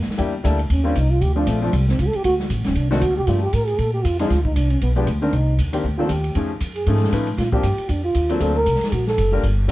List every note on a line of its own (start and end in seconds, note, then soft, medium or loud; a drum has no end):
0.02 snare soft
0.08 muted upright bass stroke soft
0.08 snare soft
0.18 0.44 E2 medium
0.18 0.31 G3 medium
0.18 0.32 A#3 medium
0.18 0.32 D4 medium
0.18 0.32 E4 medium
0.18 0.32 G4 medium
0.18 kick soft
0.18 ride medium
0.44 0.69 D2 medium
0.44 0.57 G3 medium
0.44 0.57 A#3 medium
0.44 0.58 D4 medium
0.44 0.58 E4 medium
0.44 0.58 A4 medium
0.44 kick soft
0.44 hi-hat pedal medium
0.44 ride medium
0.59 ride soft
0.70 0.95 D#2 medium
0.70 0.85 C#4 medium
0.70 kick soft
0.70 ride medium
0.84 0.94 G3 medium
0.84 0.94 A#3 medium
0.84 0.95 C4 medium
0.84 0.95 C#4 medium
0.84 0.99 D4 medium
0.84 0.95 F4 medium
0.95 1.21 C2 medium
0.95 1.12 D#4 medium
0.95 kick soft
0.95 hi-hat pedal medium
0.95 ride medium
1.11 1.23 F4 loud
1.21 1.46 D2 medium
1.21 1.35 G4 loud
1.21 kick soft
1.21 ride medium
1.36 1.60 F3 medium
1.36 1.60 A3 medium
1.36 1.61 C4 medium
1.36 1.50 D4 loud
1.36 1.61 D4 medium
1.36 1.61 F4 medium
1.47 1.72 A#1 medium
1.47 1.62 A3 medium
1.47 kick soft
1.47 hi-hat pedal medium
1.47 ride medium
1.62 1.72 F3 medium
1.62 1.76 F3 medium
1.62 1.72 A3 medium
1.62 1.72 C4 medium
1.62 1.72 D4 medium
1.62 1.72 F4 medium
1.73 1.98 C2 medium
1.73 1.88 G3 medium
1.73 kick soft
1.73 ride medium
1.88 2.02 C4 medium
1.88 snare soft
1.99 2.12 C#2 medium
1.99 2.09 F4 medium
1.99 kick soft
1.99 hi-hat pedal medium
1.99 ride medium
2.08 2.18 A4 loud
2.13 2.25 G4 loud
2.13 muted upright bass stroke soft
2.13 ride soft
2.24 2.49 D2 medium
2.24 2.34 F#4 loud
2.24 kick soft
2.24 ride medium
2.40 snare soft
2.50 2.60 A1 medium
2.50 kick soft
2.50 hi-hat pedal medium
2.50 ride medium
2.59 2.67 F#1 medium
2.64 2.75 D1 medium
2.64 2.78 C#4 medium
2.64 snare medium
2.64 ride soft
2.75 3.01 C2 medium
2.75 2.91 D4 medium
2.75 kick soft
2.75 ride medium
2.91 3.00 D#3 medium
2.91 3.01 A3 medium
2.91 3.01 C4 medium
2.91 3.01 D4 medium
2.91 3.04 D#4 medium
2.91 3.01 F#4 medium
2.91 snare soft
3.01 3.10 D#2 medium
3.01 3.17 F#4 loud
3.01 kick soft
3.01 hi-hat pedal soft
3.01 ride medium
3.10 3.18 D2 medium
3.17 3.26 C2 medium
3.17 3.30 G4 loud
3.27 3.52 G2 medium
3.27 3.41 F3 medium
3.27 3.41 A3 medium
3.27 3.41 A#3 soft
3.27 3.41 D4 medium
3.27 3.42 F4 medium
3.27 3.41 G4 medium
3.27 kick soft
3.27 ride medium
3.43 3.56 G4 loud
3.53 3.78 A2 medium
3.53 3.69 A#4 loud
3.53 kick soft
3.53 hi-hat pedal soft
3.53 ride medium
3.67 3.80 G#4 medium
3.67 ride soft
3.78 4.04 A#2 medium
3.78 3.93 A4 medium
3.78 kick soft
3.78 ride medium
3.94 4.06 G4 medium
4.04 4.29 F2 medium
4.04 4.19 F4 medium
4.04 kick soft
4.04 hi-hat pedal medium
4.04 ride medium
4.19 4.29 F3 medium
4.19 4.29 G#3 medium
4.19 4.29 C4 medium
4.19 4.30 D4 medium
4.19 4.32 D#4 loud
4.19 4.30 G#4 medium
4.19 snare soft
4.19 ride soft
4.30 4.55 D2 medium
4.30 4.43 F4 loud
4.30 kick soft
4.30 snare soft
4.30 ride medium
4.44 4.57 D#4 medium
4.44 kick medium
4.56 4.81 C2 medium
4.56 4.72 D4 medium
4.56 kick soft
4.56 hi-hat pedal medium
4.56 ride medium
4.70 4.81 C#4 medium
4.70 ride soft
4.81 5.06 B1 medium
4.81 4.91 B3 medium
4.81 kick soft
4.81 ride medium
4.96 5.06 F3 medium
4.96 5.06 G#3 medium
4.96 5.06 B3 medium
4.96 5.06 D4 medium
4.96 5.07 G4 medium
4.96 ride soft
5.07 5.32 D2 medium
5.07 kick soft
5.07 hi-hat pedal soft
5.07 ride medium
5.22 5.32 D#3 medium
5.22 5.32 A#3 medium
5.22 5.32 C4 medium
5.22 5.36 D4 medium
5.22 5.32 D4 medium
5.22 5.32 A#4 medium
5.32 5.58 C2 medium
5.32 5.59 D#4 medium
5.32 kick soft
5.32 ride medium
5.58 5.83 D#2 medium
5.58 kick soft
5.58 hi-hat pedal medium
5.58 ride medium
5.73 5.83 D#3 medium
5.73 5.83 A#3 medium
5.73 5.83 C4 medium
5.73 5.83 D4 medium
5.73 5.84 G4 medium
5.73 ride medium
5.84 6.08 D2 medium
5.84 kick soft
5.98 6.09 D#3 medium
5.98 6.09 A#3 medium
5.98 6.09 C4 medium
5.98 6.09 D4 medium
5.98 6.10 F4 medium
5.98 6.09 A4 medium
6.09 6.34 D#2 medium
6.09 6.35 G4 medium
6.09 kick soft
6.09 hi-hat pedal medium
6.09 ride medium
6.24 ride soft
6.35 6.60 F2 medium
6.35 6.49 F3 medium
6.35 6.49 A3 soft
6.35 6.49 C#4 medium
6.35 6.49 D#4 medium
6.35 6.50 G#4 medium
6.35 kick soft
6.35 ride medium
6.60 6.86 F#2 medium
6.60 kick soft
6.60 hi-hat pedal medium
6.60 ride medium
6.75 6.89 G#4 medium
6.75 ride soft
6.86 7.11 G#2 medium
6.86 7.10 F3 medium
6.86 7.11 A3 medium
6.86 7.11 C#4 medium
6.86 7.12 D#4 medium
6.86 7.12 G#4 medium
6.86 7.13 A4 medium
6.86 kick soft
6.86 ride medium
6.96 snare soft
7.04 snare soft
7.12 7.37 A2 medium
7.12 7.25 F3 medium
7.12 7.26 A3 medium
7.12 7.26 C#4 medium
7.12 7.26 D#4 medium
7.12 7.26 B4 medium
7.12 kick soft
7.12 hi-hat pedal soft
7.12 ride medium
7.27 ride soft
7.37 7.63 A#2 medium
7.37 7.52 F4 medium
7.37 kick soft
7.37 snare soft
7.37 ride medium
7.52 7.62 F3 medium
7.52 7.62 A#3 medium
7.52 7.63 C4 medium
7.52 7.63 D4 medium
7.52 7.91 G4 loud
7.52 7.63 G4 medium
7.52 kick soft
7.63 7.77 G2 medium
7.63 kick soft
7.63 hi-hat pedal medium
7.63 ride medium
7.78 muted upright bass stroke soft
7.78 ride soft
7.89 8.14 F2 medium
7.89 8.04 D4 medium
7.89 kick soft
7.89 ride medium
8.04 8.42 F4 medium
8.14 8.40 D#2 medium
8.14 kick soft
8.14 hi-hat pedal soft
8.14 ride medium
8.29 8.39 F#3 medium
8.29 8.40 A#3 medium
8.29 8.40 C4 medium
8.29 8.40 D4 medium
8.29 8.40 A4 medium
8.29 ride soft
8.40 8.66 D2 medium
8.40 8.54 F#3 medium
8.40 8.54 A#3 medium
8.40 8.54 C4 medium
8.40 8.55 D4 medium
8.40 8.55 A4 medium
8.40 kick soft
8.40 ride medium
8.56 8.95 A#4 loud
8.66 8.80 C2 medium
8.66 kick soft
8.66 hi-hat pedal medium
8.66 ride medium
8.75 snare soft
8.81 snare soft
8.81 ride soft
8.92 9.17 A#1 medium
8.92 9.07 F#4 medium
8.92 kick soft
8.92 ride medium
9.07 9.41 A4 loud
9.07 snare soft
9.18 9.43 F#1 medium
9.18 kick soft
9.18 hi-hat pedal medium
9.18 ride medium
9.32 9.42 G3 medium
9.32 9.42 A#3 medium
9.32 9.42 D4 medium
9.32 9.42 F4 medium
9.32 9.43 A#4 medium
9.43 9.68 G1 medium
9.43 kick soft
9.43 ride medium
9.68 9.72 G3 medium
9.68 9.72 A#3 medium
9.68 9.72 D4 medium
9.68 hi-hat pedal medium
9.68 ride medium